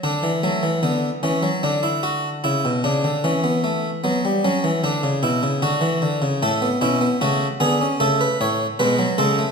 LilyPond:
<<
  \new Staff \with { instrumentName = "Harpsichord" } { \time 4/4 \key d \major \tempo 4 = 76 r1 | r1 | a'8 e'8 fis'8 gis'8 a'16 b'16 cis''8 b'8 a'8 | }
  \new Staff \with { instrumentName = "Harpsichord" } { \clef bass \time 4/4 \key d \major << { d'8 a8 b8 cis'8 d'16 e'16 fis'8 e'8 d'8 | cis'16 b16 a8 b8 cis'8 d'8 e'8 fis'4 | a16 b16 cis'16 b16 a8 b16 cis'16 a4 gis16 fis16 gis16 a16 | } \\ { d16 e16 fis16 e16 d8 e16 fis16 d4 cis16 b,16 cis16 d16 | e4 fis16 g16 fis16 e16 d16 cis16 b,16 cis16 d16 e16 d16 cis16 | a,8 b,8 cis8 d8 cis8 a,8 b,8 cis8 | } >> }
>>